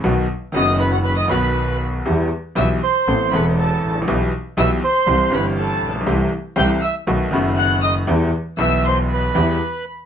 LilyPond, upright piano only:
\new Staff \with { instrumentName = "Upright piano" } { \clef bass \time 4/4 \key e \minor \tempo 4 = 119 << { <b,, b, dis fis b fis'>8 r8 <fis,, fis, dis fis b fis'>4. <b,, b, dis fis b fis'>4. | <e, e g b g'>8 r8 <b,, b, e g b g'>8 r8 <a,, a, e b c' a'>8 <e,, e, e b c' a'>4. | <b,, b, e g b g'>8 r8 <b,, b, e g b g'>8 r8 <c, c e g c' g'>8 <g,, g, e g c' g'>4. | <c, c e a c' g'>8 r8 <c, c e a c' g'>8 r8 <b,, b, dis a b fis'>8 <fis,, fis, dis a b fis'>4. |
<e, e g b g'>8 r8 <b,, b, e g b g'>4. <e, e g b g'>8 r4 | } \\ { r1 | r2. r8 r32 gis,,32 a,,32 ais,,32 | r2. r8 r32 a,,32 ais,,32 b,,32 | r1 |
r1 | } >> }